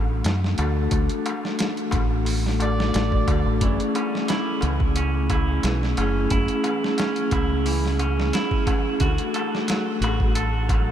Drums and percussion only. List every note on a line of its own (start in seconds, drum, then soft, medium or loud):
0.10 darbuka tek soft
0.24 snare loud
0.24 closed hi-hat medium
0.24 darbuka tek medium
0.44 snare soft
0.44 darbuka tek soft
0.58 closed hi-hat medium
0.58 darbuka tek medium
0.77 darbuka tek soft
0.91 kick loud
0.91 closed hi-hat medium
0.91 darbuka tek soft
1.09 closed hi-hat soft
1.09 darbuka tek soft
1.26 closed hi-hat medium
1.26 darbuka tek medium
1.43 snare soft
1.43 darbuka tek soft
1.59 snare loud
1.59 closed hi-hat medium
1.59 darbuka tek soft
1.77 closed hi-hat soft
1.77 darbuka tek soft
1.91 kick medium
1.91 closed hi-hat medium
1.91 darbuka tek medium
2.11 darbuka tek soft
2.25 open hi-hat medium
2.25 darbuka tek soft
2.44 snare soft
2.44 darbuka tek soft
2.60 closed hi-hat medium
2.60 darbuka tek medium
2.78 snare medium
2.78 darbuka tek soft
2.93 snare loud
2.93 closed hi-hat medium
2.93 darbuka tek soft
3.12 kick medium
3.12 darbuka tek soft
3.28 kick medium
3.28 closed hi-hat medium
3.28 darbuka tek medium
3.46 darbuka tek soft
3.61 kick loud
3.61 closed hi-hat medium
3.61 darbuka tek soft
3.80 closed hi-hat soft
3.80 darbuka tek soft
3.95 closed hi-hat medium
3.95 darbuka tek medium
4.13 snare soft
4.13 darbuka tek soft
4.28 snare loud
4.28 closed hi-hat medium
4.28 darbuka tek soft
4.46 darbuka tek soft
4.61 closed hi-hat medium
4.61 darbuka tek medium
4.80 kick medium
4.80 darbuka tek soft
4.96 closed hi-hat medium
4.96 darbuka tek medium
5.14 darbuka tek soft
5.30 kick medium
5.30 closed hi-hat medium
5.30 darbuka tek medium
5.48 darbuka tek soft
5.63 snare medium
5.63 closed hi-hat medium
5.63 darbuka tek medium
5.82 snare soft
5.82 darbuka tek soft
5.97 closed hi-hat medium
5.97 darbuka tek medium
6.16 darbuka tek soft
6.30 kick loud
6.30 closed hi-hat medium
6.30 darbuka tek soft
6.48 closed hi-hat soft
6.48 darbuka tek soft
6.64 closed hi-hat medium
6.64 darbuka tek medium
6.83 snare soft
6.83 darbuka tek soft
6.98 snare loud
6.98 closed hi-hat medium
6.98 darbuka tek soft
7.16 closed hi-hat soft
7.16 darbuka tek soft
7.31 kick medium
7.31 closed hi-hat medium
7.31 darbuka tek medium
7.50 darbuka tek soft
7.66 open hi-hat medium
7.66 darbuka tek soft
7.84 snare soft
7.84 darbuka tek soft
7.99 closed hi-hat medium
7.99 darbuka tek medium
8.17 snare medium
8.17 darbuka tek soft
8.33 snare loud
8.33 closed hi-hat medium
8.33 darbuka tek soft
8.51 kick medium
8.51 darbuka tek soft
8.67 kick medium
8.67 closed hi-hat medium
8.67 darbuka tek medium
8.87 darbuka tek soft
9.00 kick medium
9.00 closed hi-hat medium
9.00 darbuka tek soft
9.18 closed hi-hat soft
9.18 darbuka tek soft
9.34 closed hi-hat medium
9.34 darbuka tek medium
9.54 snare soft
9.54 darbuka tek soft
9.68 snare loud
9.68 closed hi-hat medium
9.68 darbuka tek soft
9.88 darbuka tek soft
10.02 closed hi-hat medium
10.02 darbuka tek medium
10.20 kick medium
10.20 darbuka tek soft
10.35 closed hi-hat medium
10.35 darbuka tek soft
10.55 darbuka tek soft
10.69 kick medium
10.69 closed hi-hat medium
10.69 darbuka tek medium